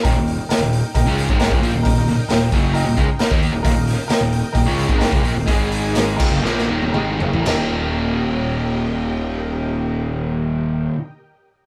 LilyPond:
<<
  \new Staff \with { instrumentName = "String machine" } { \time 4/4 \key ees \mixolydian \tempo 4 = 127 <ees' bes' ees'' g''>1~ | <ees' bes' ees'' g''>1 | <bes' ees'' g''>1 | <ees' aes' ees'' aes''>4. <g' bes' ees'' g''>2~ <g' bes' ees'' g''>8 |
<g' bes' ees'' g''>1~ | <g' bes' ees'' g''>1 | }
  \new Staff \with { instrumentName = "Upright piano" } { \time 4/4 \key ees \mixolydian <bes' ees'' g''>4 <bes' ees'' g''>4 <bes' ees'' g''>4 <bes' ees'' g''>4 | <bes' ees'' bes''>4 <bes' ees'' g''>4 <bes' ees'' g''>4 <bes' ees'' bes''>4 | <bes' ees'' f''>4 <bes' ees'' g''>4 <bes' ees'' g''>4 <bes' ees'' g''>4 | <aes' ees'' aes''>4 <aes' ees'' bes''>8 <bes' ees'' g''>4 r8 <bes' ees'' g''>4 |
<bes' ees'' g''>1~ | <bes' ees'' g''>1 | }
  \new Staff \with { instrumentName = "Distorted electric guitar" } { \clef bass \time 4/4 \key ees \mixolydian <ees, bes,>16 <ees, bes,>8 r8 <ees, bes,>8 r16 <ees, bes,>16 <des aes des'>8 <aes, ees aes>8 <des aes>16 <bes, f>16 <ees, bes,>16 | <ees, bes,>16 <ees, bes,>16 <ees, bes,>16 r16 <ees, bes,>8 <ges, des ges>8. <ees, bes,>16 <des aes>16 r8 <ees bes ees'>8 <ees, bes,>16 | <ees, bes,>16 <ees, bes,>8 r8 <ees, bes,>8 r16 <ees, bes,>16 <des aes des'>8 <aes, ees aes>8 <des aes>16 <bes, f>16 <ees, bes,>16 | <aes, ees aes>4. <des aes>16 <ges, des>16 <bes, f bes>8 <ees, bes, ees>8 <aes, ees aes>8 <ges, des>16 <a, fes>16 |
<ees, bes, ees>1~ | <ees, bes, ees>1 | }
  \new Staff \with { instrumentName = "Overdriven electric guitar" } { \clef bass \time 4/4 \key ees \mixolydian <ees, bes,>16 <ees, bes,>8 r8 <ees, bes,>8 r16 <ees, bes,>16 <des aes des'>8 <aes, ees aes>8 <des aes>16 <bes, f>16 <ees, bes,>16 | <ees, bes,>16 <ees, bes,>16 <ees, bes,>16 r16 <ees, bes,>8 <ges, des ges>8. <ees, bes,>16 <des aes>16 r8 <ees bes ees'>8 <ees, bes,>16 | <ees, bes,>16 <ees, bes,>8 r8 <ees, bes,>8 r16 <ees, bes,>16 <des aes des'>8 <aes, ees aes>8 <des aes>16 <bes, f>16 <ees, bes,>16 | <aes, ees aes>4. <des aes>16 <ges, des>16 <bes, f bes>8 <ees, bes, ees>8 <aes, ees aes>8 <ges, des>16 <a, fes>16 |
<ees, bes, ees g bes ees'>1~ | <ees, bes, ees g bes ees'>1 | }
  \new Staff \with { instrumentName = "Picked electric bass" } { \clef bass \time 4/4 \key ees \mixolydian ees,,16 ees,,8 r8 ees,,8 r16 ees,,16 des,8 aes,,8 des,16 bes,,16 ees,,16 | ees,,16 ees,,16 ees,,16 r16 ees,,8 ges,,8. ees,,16 des,16 r8 ees,8 ees,,16 | ees,,16 ees,,8 r8 ees,,8 r16 ees,,16 des,8 aes,,8 des,16 bes,,16 ees,,16 | aes,,4. des,16 ges,,16 bes,,8 ees,,8 aes,,8 ges,,16 a,,16 |
ees,,1~ | ees,,1 | }
  \new DrumStaff \with { instrumentName = "Drums" } \drummode { \time 4/4 <hho bd>8 hho8 <hho sn>8 hho8 <hho bd>8 hho16 bd16 <hho sn>16 bd16 hho8 | <hho bd>8 hho8 <hho sn>8 <hho bd>8 hho8 <hho bd>8 <hho sn>16 bd16 hho8 | <hho bd>8 <hho sn>8 <hho sn>8 hho8 <hho bd>8 hho16 bd16 <hho sn>16 bd16 hho8 | <hho bd>8 hho8 <hho sn>8 <cymc bd>8 sn16 sn8 tommh16 toml8 tomfh16 tomfh16 |
<cymc sn tomfh>4 r4 r4 r4 | r4 r4 r4 r4 | }
>>